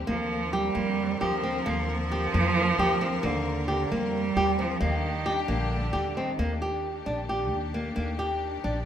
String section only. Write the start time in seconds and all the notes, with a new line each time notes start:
0.08 D3 C4 A#4
4.83 G3 D4 G4
6.38 D#3 D4 G4